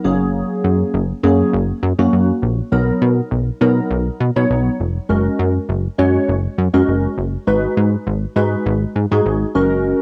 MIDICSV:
0, 0, Header, 1, 3, 480
1, 0, Start_track
1, 0, Key_signature, 6, "major"
1, 0, Tempo, 594059
1, 279, Time_signature, 4, 2, 24, 8
1, 8095, End_track
2, 0, Start_track
2, 0, Title_t, "Synth keys"
2, 0, Program_c, 0, 88
2, 35, Note_on_c, 0, 54, 92
2, 36, Note_on_c, 0, 58, 88
2, 37, Note_on_c, 0, 61, 85
2, 38, Note_on_c, 0, 68, 105
2, 807, Note_off_c, 0, 54, 0
2, 808, Note_off_c, 0, 58, 0
2, 808, Note_off_c, 0, 61, 0
2, 809, Note_off_c, 0, 68, 0
2, 996, Note_on_c, 0, 54, 95
2, 998, Note_on_c, 0, 58, 85
2, 999, Note_on_c, 0, 61, 87
2, 1000, Note_on_c, 0, 68, 102
2, 1283, Note_off_c, 0, 54, 0
2, 1285, Note_off_c, 0, 58, 0
2, 1285, Note_off_c, 0, 61, 0
2, 1286, Note_off_c, 0, 68, 0
2, 1604, Note_on_c, 0, 54, 91
2, 1605, Note_on_c, 0, 58, 88
2, 1606, Note_on_c, 0, 61, 83
2, 1608, Note_on_c, 0, 66, 103
2, 1886, Note_off_c, 0, 54, 0
2, 1887, Note_off_c, 0, 58, 0
2, 1887, Note_off_c, 0, 61, 0
2, 1888, Note_off_c, 0, 66, 0
2, 2196, Note_on_c, 0, 54, 93
2, 2197, Note_on_c, 0, 59, 86
2, 2199, Note_on_c, 0, 63, 88
2, 2199, Note_on_c, 0, 70, 103
2, 2544, Note_off_c, 0, 54, 0
2, 2544, Note_off_c, 0, 59, 0
2, 2545, Note_off_c, 0, 63, 0
2, 2545, Note_off_c, 0, 70, 0
2, 2915, Note_on_c, 0, 54, 95
2, 2916, Note_on_c, 0, 59, 86
2, 2918, Note_on_c, 0, 63, 88
2, 2919, Note_on_c, 0, 70, 102
2, 3203, Note_off_c, 0, 54, 0
2, 3204, Note_off_c, 0, 59, 0
2, 3204, Note_off_c, 0, 63, 0
2, 3205, Note_off_c, 0, 70, 0
2, 3521, Note_on_c, 0, 54, 91
2, 3522, Note_on_c, 0, 59, 85
2, 3523, Note_on_c, 0, 63, 87
2, 3526, Note_on_c, 0, 73, 105
2, 3804, Note_off_c, 0, 54, 0
2, 3805, Note_off_c, 0, 59, 0
2, 3805, Note_off_c, 0, 63, 0
2, 3807, Note_off_c, 0, 73, 0
2, 4113, Note_on_c, 0, 56, 86
2, 4116, Note_on_c, 0, 61, 78
2, 4116, Note_on_c, 0, 66, 76
2, 4117, Note_on_c, 0, 70, 93
2, 4462, Note_off_c, 0, 56, 0
2, 4463, Note_off_c, 0, 61, 0
2, 4464, Note_off_c, 0, 66, 0
2, 4464, Note_off_c, 0, 70, 0
2, 4834, Note_on_c, 0, 56, 90
2, 4835, Note_on_c, 0, 61, 88
2, 4836, Note_on_c, 0, 66, 86
2, 4837, Note_on_c, 0, 73, 107
2, 5122, Note_off_c, 0, 56, 0
2, 5123, Note_off_c, 0, 61, 0
2, 5124, Note_off_c, 0, 66, 0
2, 5124, Note_off_c, 0, 73, 0
2, 5441, Note_on_c, 0, 56, 99
2, 5442, Note_on_c, 0, 61, 85
2, 5444, Note_on_c, 0, 66, 89
2, 5445, Note_on_c, 0, 70, 104
2, 5724, Note_off_c, 0, 56, 0
2, 5725, Note_off_c, 0, 61, 0
2, 5726, Note_off_c, 0, 66, 0
2, 5726, Note_off_c, 0, 70, 0
2, 6035, Note_on_c, 0, 56, 94
2, 6036, Note_on_c, 0, 63, 85
2, 6037, Note_on_c, 0, 66, 85
2, 6040, Note_on_c, 0, 71, 104
2, 6383, Note_off_c, 0, 56, 0
2, 6383, Note_off_c, 0, 63, 0
2, 6384, Note_off_c, 0, 66, 0
2, 6385, Note_off_c, 0, 71, 0
2, 6754, Note_on_c, 0, 56, 100
2, 6756, Note_on_c, 0, 63, 91
2, 6758, Note_on_c, 0, 66, 89
2, 6759, Note_on_c, 0, 71, 104
2, 7042, Note_off_c, 0, 56, 0
2, 7044, Note_off_c, 0, 63, 0
2, 7045, Note_off_c, 0, 66, 0
2, 7045, Note_off_c, 0, 71, 0
2, 7364, Note_on_c, 0, 56, 97
2, 7366, Note_on_c, 0, 63, 88
2, 7366, Note_on_c, 0, 66, 83
2, 7368, Note_on_c, 0, 68, 98
2, 7646, Note_off_c, 0, 56, 0
2, 7647, Note_off_c, 0, 63, 0
2, 7647, Note_off_c, 0, 66, 0
2, 7648, Note_off_c, 0, 68, 0
2, 7716, Note_on_c, 0, 56, 99
2, 7717, Note_on_c, 0, 61, 89
2, 7718, Note_on_c, 0, 66, 90
2, 7720, Note_on_c, 0, 70, 111
2, 8095, Note_off_c, 0, 56, 0
2, 8095, Note_off_c, 0, 61, 0
2, 8095, Note_off_c, 0, 66, 0
2, 8095, Note_off_c, 0, 70, 0
2, 8095, End_track
3, 0, Start_track
3, 0, Title_t, "Analog synth bass"
3, 0, Program_c, 1, 38
3, 40, Note_on_c, 1, 30, 97
3, 351, Note_off_c, 1, 30, 0
3, 520, Note_on_c, 1, 42, 92
3, 675, Note_off_c, 1, 42, 0
3, 759, Note_on_c, 1, 30, 105
3, 915, Note_off_c, 1, 30, 0
3, 998, Note_on_c, 1, 42, 107
3, 1154, Note_off_c, 1, 42, 0
3, 1239, Note_on_c, 1, 30, 107
3, 1394, Note_off_c, 1, 30, 0
3, 1477, Note_on_c, 1, 42, 101
3, 1560, Note_off_c, 1, 42, 0
3, 1605, Note_on_c, 1, 42, 108
3, 1678, Note_off_c, 1, 42, 0
3, 1719, Note_on_c, 1, 42, 91
3, 1875, Note_off_c, 1, 42, 0
3, 1959, Note_on_c, 1, 34, 93
3, 2115, Note_off_c, 1, 34, 0
3, 2198, Note_on_c, 1, 35, 100
3, 2354, Note_off_c, 1, 35, 0
3, 2437, Note_on_c, 1, 47, 98
3, 2594, Note_off_c, 1, 47, 0
3, 2676, Note_on_c, 1, 35, 88
3, 2833, Note_off_c, 1, 35, 0
3, 2917, Note_on_c, 1, 47, 108
3, 3074, Note_off_c, 1, 47, 0
3, 3155, Note_on_c, 1, 35, 107
3, 3312, Note_off_c, 1, 35, 0
3, 3397, Note_on_c, 1, 47, 98
3, 3480, Note_off_c, 1, 47, 0
3, 3525, Note_on_c, 1, 47, 96
3, 3598, Note_off_c, 1, 47, 0
3, 3637, Note_on_c, 1, 35, 101
3, 3793, Note_off_c, 1, 35, 0
3, 3878, Note_on_c, 1, 29, 87
3, 4034, Note_off_c, 1, 29, 0
3, 4116, Note_on_c, 1, 30, 109
3, 4273, Note_off_c, 1, 30, 0
3, 4358, Note_on_c, 1, 42, 102
3, 4514, Note_off_c, 1, 42, 0
3, 4597, Note_on_c, 1, 30, 104
3, 4753, Note_off_c, 1, 30, 0
3, 4839, Note_on_c, 1, 42, 109
3, 4995, Note_off_c, 1, 42, 0
3, 5078, Note_on_c, 1, 30, 105
3, 5234, Note_off_c, 1, 30, 0
3, 5317, Note_on_c, 1, 42, 106
3, 5400, Note_off_c, 1, 42, 0
3, 5444, Note_on_c, 1, 42, 99
3, 5518, Note_off_c, 1, 42, 0
3, 5558, Note_on_c, 1, 30, 89
3, 5714, Note_off_c, 1, 30, 0
3, 5797, Note_on_c, 1, 30, 91
3, 5954, Note_off_c, 1, 30, 0
3, 6038, Note_on_c, 1, 32, 102
3, 6194, Note_off_c, 1, 32, 0
3, 6277, Note_on_c, 1, 44, 101
3, 6434, Note_off_c, 1, 44, 0
3, 6518, Note_on_c, 1, 32, 103
3, 6674, Note_off_c, 1, 32, 0
3, 6756, Note_on_c, 1, 44, 99
3, 6912, Note_off_c, 1, 44, 0
3, 6996, Note_on_c, 1, 32, 115
3, 7153, Note_off_c, 1, 32, 0
3, 7237, Note_on_c, 1, 44, 92
3, 7320, Note_off_c, 1, 44, 0
3, 7366, Note_on_c, 1, 44, 101
3, 7439, Note_off_c, 1, 44, 0
3, 7479, Note_on_c, 1, 32, 100
3, 7635, Note_off_c, 1, 32, 0
3, 7719, Note_on_c, 1, 30, 90
3, 8031, Note_off_c, 1, 30, 0
3, 8095, End_track
0, 0, End_of_file